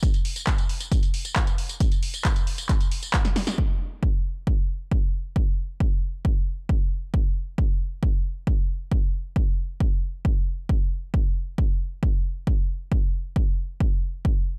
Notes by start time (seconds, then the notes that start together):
0.03 kick, closed hi-hat, tambourine
0.14 closed hi-hat, tambourine
0.25 open hi-hat
0.36 closed hi-hat, tambourine
0.47 kick, clap, closed hi-hat, tambourine
0.58 closed hi-hat, tambourine
0.69 open hi-hat
0.80 closed hi-hat, tambourine
0.92 kick, closed hi-hat, tambourine
1.03 closed hi-hat, tambourine
1.14 open hi-hat
1.25 closed hi-hat, tambourine
1.36 kick, clap, closed hi-hat, tambourine
1.47 closed hi-hat, tambourine
1.58 open hi-hat
1.69 closed hi-hat, tambourine
1.80 kick, closed hi-hat, tambourine
1.92 closed hi-hat, tambourine
2.03 open hi-hat
2.14 closed hi-hat, tambourine
2.25 kick, clap, closed hi-hat, tambourine
2.36 closed hi-hat, tambourine
2.47 open hi-hat
2.58 closed hi-hat, tambourine
2.69 kick, clap, closed hi-hat, tambourine
2.80 closed hi-hat, tambourine
2.91 open hi-hat
3.03 closed hi-hat, tambourine
3.14 kick, clap, closed hi-hat, tambourine
3.25 snare, closed hi-hat, tambourine
3.36 snare, open hi-hat
3.47 snare, closed hi-hat, tambourine
3.58 kick
4.03 kick
4.47 kick
4.92 kick
5.36 kick
5.80 kick
6.25 kick
6.69 kick
7.14 kick
7.58 kick
8.03 kick
8.47 kick
8.92 kick
9.36 kick
9.80 kick
10.25 kick
10.69 kick
11.14 kick
11.58 kick
12.03 kick
12.47 kick
12.92 kick
13.36 kick
13.80 kick
14.25 kick